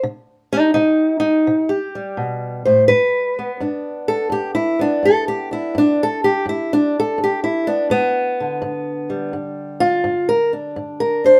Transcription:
0.03 C3
0.53 D#4 G4
0.74 C3 D#4
1.20 D#4
1.47 C3
1.69 G4
1.95 G3
2.17 B2
2.65 A2 C5
2.88 G2 B4
3.39 B3
3.60 G2 D4
4.08 A4
4.30 G2 G4
4.55 E4
4.79 B3 D4
5.03 G2 A4
5.28 G4
5.51 D4 E4
5.75 G2 D4
6.03 A4
6.24 G4
6.45 G2 E4
6.73 D4
7.00 A4
7.18 G2
7.24 G4
7.44 E4
7.67 B3 D4
7.90 G2 B3
8.40 D3
8.62 G2
9.10 G3
9.33 G2
9.80 F4
10.04 G2
10.29 A#4
10.53 D4
10.76 G2
11.00 A#4
11.24 D4 C5

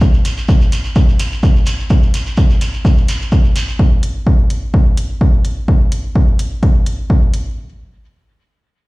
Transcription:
0.01 kick, shekere
0.14 shekere
0.25 closed hi-hat, shekere
0.37 shekere
0.49 kick, shekere
0.61 shekere
0.72 closed hi-hat, shekere
0.84 shekere
0.95 kick, shekere
1.09 shekere
1.19 closed hi-hat, shekere
1.32 shekere
1.43 kick, shekere
1.56 shekere
1.66 closed hi-hat, shekere
1.80 shekere
1.90 kick, shekere
2.02 shekere
2.14 closed hi-hat, shekere
2.26 shekere
2.37 kick, shekere
2.50 shekere
2.61 closed hi-hat, shekere
2.74 shekere
2.85 kick, shekere
2.97 shekere
3.08 closed hi-hat, shekere
3.22 shekere
3.32 kick, shekere
3.44 shekere
3.56 closed hi-hat, shekere
3.68 shekere
3.79 kick
4.03 closed hi-hat
4.27 kick
4.50 closed hi-hat
4.74 kick
4.97 closed hi-hat
5.21 kick
5.45 closed hi-hat
5.68 kick
5.92 closed hi-hat
6.15 kick
6.39 closed hi-hat
6.63 kick, closed hi-hat
6.86 closed hi-hat
7.10 kick
7.34 closed hi-hat

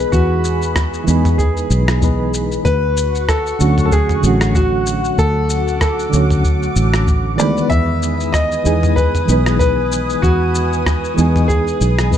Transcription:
Already playing: E3 G#3 B3 D#4 G#4 B4 B5
0.12 E2 F#4, kick, shaker
0.44 shaker
0.62 shaker
0.76 kick, cross-stick, shaker
0.94 shaker
1.04 E2 E3 G#3 B3, shaker
1.09 D#4 G#4
1.25 mid tom, shaker
1.38 G#4, kick, shaker
1.57 shaker
1.70 B1, shaker
1.88 cross-stick, shaker
2.01 E3 G#3 B3 D#4 B4, kick, shaker
2.34 shaker
2.52 shaker
2.65 D2 F#4 B4 F#5 C#6, kick, shaker
2.97 shaker
3.15 shaker
3.28 A4, kick, cross-stick, shaker
3.47 shaker
3.59 D2 D3 F#3 A3 C#4 F#4, shaker
3.78 mid tom, shaker
3.86 A4
3.92 G#4, kick, shaker
4.09 mid tom, shaker
4.20 A1 D3 F#3 A3, shaker
4.25 C#4 F#4
4.41 cross-stick, shaker
4.55 F#4, kick, shaker
4.87 shaker
5.05 shaker
5.18 D2 A4 D6, kick, shaker
5.50 shaker
5.68 shaker
5.81 A4, kick, cross-stick, shaker
5.99 shaker
6.09 D2 D3 F#3 A3, shaker
6.14 C#4 F#4
6.30 mid tom, shaker
6.44 kick, shaker
6.63 shaker
6.76 A1, shaker
6.94 cross-stick, shaker
7.08 kick, shaker
7.36 D2 E3 G#3 B3 D5, shaker
7.41 D#3 B4
7.57 shaker
7.70 E2 B4 E5 G#5 D#6, kick, shaker
8.03 shaker
8.20 shaker
8.32 D#5, kick, cross-stick, shaker
8.52 shaker
8.64 E2 E3 G#3 B3 D#4 G#4, shaker
8.83 mid tom, shaker
8.96 B4, kick, shaker
9.15 mid tom, shaker
9.25 B1 E3 G#3 B3, shaker
9.30 D#4 B4
9.46 cross-stick, shaker
9.59 B4, kick, shaker
9.92 shaker
10.10 shaker
10.22 E2 F#4, kick, shaker
10.55 shaker
10.73 shaker
10.86 kick, cross-stick, shaker
11.05 shaker
11.14 E2 E3 G#3 B3, shaker
11.19 D#4 G#4
11.36 mid tom, shaker
11.48 G#4, kick, shaker
11.68 shaker
11.81 B1, shaker
11.99 cross-stick, shaker
12.11 E3 G#3 B3 D#4 B4, kick, shaker

